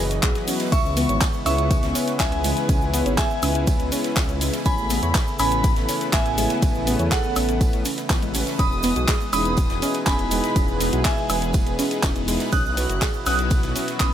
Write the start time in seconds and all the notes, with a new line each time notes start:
Already playing: F#1 B2 E3 F#3 F#4 D#5
0.10 snare, closed hi-hat, cabasa
0.23 B1 F#3 B3 E4 F#4 G#4 B4, kick, clap, closed hi-hat, tambourine, cabasa
0.35 snare, closed hi-hat, cabasa
0.48 C#4, open hi-hat, cabasa
0.59 snare, closed hi-hat, cabasa
0.72 C#2 C#3 G#3 B3 C#4 E4 E5 C#6, kick, closed hi-hat, ride, tambourine, cabasa
0.85 cabasa
0.97 B3, open hi-hat, tambourine, cabasa
1.09 G#1 C#5, closed hi-hat, cabasa
1.21 G#4, kick, snare, clap, closed hi-hat, ride, tambourine, cabasa
1.33 closed hi-hat, cabasa
1.46 C#2 B3 C#4 E4 G#4 B4 E5 C#6, open hi-hat, tambourine, cabasa, high woodblock
1.58 closed hi-hat, cabasa
1.71 kick, closed hi-hat, ride, tambourine, cabasa
1.83 C#2, snare, closed hi-hat, cabasa
1.95 C#4, open hi-hat, tambourine, cabasa
2.08 snare, closed hi-hat, cabasa
2.20 C#2 B3 C#4 E4 G#4 B4 E5 G#5, kick, snare, clap, closed hi-hat, ride, tambourine, cabasa
2.32 closed hi-hat, cabasa
2.44 G#3, open hi-hat, tambourine, cabasa
2.57 snare, closed hi-hat, cabasa
2.69 C#2 C#4, kick, closed hi-hat, ride, tambourine, cabasa
2.81 cabasa
2.94 B3, open hi-hat, tambourine, cabasa
3.06 G#1 C#5, closed hi-hat, cabasa
3.18 G#4 E5 G#5, kick, snare, clap, closed hi-hat, ride, tambourine, cabasa
3.30 cabasa
3.42 C#2 B3 C#4 E4 G#4 B4, open hi-hat, tambourine, cabasa, high woodblock
3.55 closed hi-hat, cabasa
3.67 kick, closed hi-hat, ride, tambourine, cabasa
3.79 C#2, closed hi-hat, cabasa
3.92 B3 C#4 E4 G#4 B4, open hi-hat, tambourine, cabasa
4.04 snare, closed hi-hat, cabasa
4.16 C#2 C#4, kick, snare, clap, closed hi-hat, ride, tambourine, cabasa
4.29 closed hi-hat, cabasa
4.41 G#3, open hi-hat, cabasa
4.53 snare, closed hi-hat, cabasa
4.65 A1 C#3 E3 A3 B3 C#4 G#5 B5, kick, closed hi-hat, ride, tambourine, cabasa
4.78 cabasa
4.90 B3, open hi-hat, tambourine, cabasa
5.03 E2 C#5, closed hi-hat, cabasa
5.15 G#4, kick, snare, clap, closed hi-hat, ride, tambourine, cabasa
5.27 closed hi-hat, cabasa
5.39 A1 B3 C#4 E4 A4 B4 G#5 B5, open hi-hat, tambourine, cabasa, high woodblock
5.51 closed hi-hat, cabasa
5.64 kick, closed hi-hat, ride, tambourine, cabasa
5.76 A1, snare, closed hi-hat, cabasa
5.89 C#4, open hi-hat, tambourine, cabasa
6.01 snare, closed hi-hat, cabasa
6.13 A1 B3 C#4 E4 A4 B4 E5 G#5, kick, snare, clap, closed hi-hat, ride, tambourine, cabasa
6.26 closed hi-hat, cabasa
6.38 G#3, open hi-hat, tambourine, cabasa
6.50 snare, closed hi-hat, cabasa
6.62 A1 C#4, kick, closed hi-hat, ride, tambourine, cabasa
6.75 cabasa
6.87 B3, open hi-hat, tambourine, cabasa
6.99 E2 C#5, closed hi-hat, cabasa
7.11 G#4 A4 F#5, kick, snare, clap, closed hi-hat, ride, tambourine, cabasa
7.24 cabasa
7.36 A1 B3 C#4 E4 A4 B4, open hi-hat, tambourine, cabasa, high woodblock
7.49 closed hi-hat, cabasa
7.61 kick, closed hi-hat, ride, tambourine, cabasa
7.73 A1, closed hi-hat, cabasa
7.85 C#4, open hi-hat, tambourine, cabasa
7.97 snare, closed hi-hat, cabasa
8.10 A1 B3 C#4 E4 A4 B4, kick, snare, clap, closed hi-hat, ride, tambourine, cabasa
8.22 G#3, closed hi-hat, cabasa
8.34 C#4, open hi-hat, cabasa
8.47 snare, closed hi-hat, cabasa
8.59 E1 B2 G#3 C#4 G#4 B4 B5 D#6, kick, closed hi-hat, ride, tambourine, cabasa
8.72 cabasa
8.83 B3, open hi-hat, tambourine, cabasa
8.96 B1 F#4, closed hi-hat, cabasa
9.08 G#4, kick, snare, clap, closed hi-hat, ride, tambourine, cabasa
9.20 closed hi-hat, cabasa
9.33 E1 B3 C#4 D#4 E4 G#4 B4 B5 D#6, open hi-hat, tambourine, cabasa, high woodblock
9.45 closed hi-hat, cabasa
9.57 kick, closed hi-hat, ride, tambourine, cabasa
9.70 E1, snare, closed hi-hat, cabasa
9.82 C#4, open hi-hat, tambourine, cabasa
9.94 snare, closed hi-hat, cabasa
10.06 E1 B3 C#4 D#4 E4 G#4 B4 G#5 B5, kick, snare, clap, closed hi-hat, ride, tambourine, cabasa
10.19 closed hi-hat, cabasa
10.31 G#3, open hi-hat, tambourine, cabasa
10.44 snare, closed hi-hat, cabasa
10.56 E1 C#4, kick, closed hi-hat, ride, tambourine, cabasa
10.68 cabasa
10.80 B3, open hi-hat, tambourine, cabasa
10.93 B1 F#4, closed hi-hat, cabasa
11.04 G#4 E5 G#5, kick, snare, clap, closed hi-hat, ride, tambourine, cabasa
11.17 cabasa
11.29 E1 B3 C#4 E4 G#4 B4, open hi-hat, tambourine, cabasa, high woodblock
11.42 closed hi-hat, cabasa
11.53 kick, closed hi-hat, ride, tambourine, cabasa
11.66 E1, closed hi-hat, cabasa
11.79 B3 C#4 D#4 E4 G#4 B4, open hi-hat, tambourine, cabasa
11.91 snare, closed hi-hat, cabasa
12.03 E1 C#4, kick, snare, clap, closed hi-hat, ride, tambourine, cabasa
12.15 closed hi-hat, cabasa
12.28 G#3, open hi-hat, cabasa
12.40 snare, closed hi-hat, cabasa
12.52 B1 F#3 C#4 E4 F#4 D#6 F#6, kick, closed hi-hat, ride, tambourine, cabasa
12.66 cabasa
12.77 B3, open hi-hat, tambourine, cabasa
12.90 F#1 F#4, closed hi-hat, cabasa
13.02 G#4, kick, snare, clap, closed hi-hat, ride, tambourine, cabasa
13.13 closed hi-hat, cabasa
13.26 B1 F#3 B3 C#4 E4 F#4 B4 D#6 F#6, open hi-hat, tambourine, cabasa, high woodblock
13.39 closed hi-hat, cabasa
13.50 kick, closed hi-hat, ride, tambourine, cabasa
13.63 B1, snare, closed hi-hat, cabasa
13.75 C#4, open hi-hat, tambourine, cabasa
13.88 snare, closed hi-hat, cabasa
14.00 B1 F#3 B3 C#4 E4 F#4 B5 D#6, kick, clap, closed hi-hat, ride, tambourine, cabasa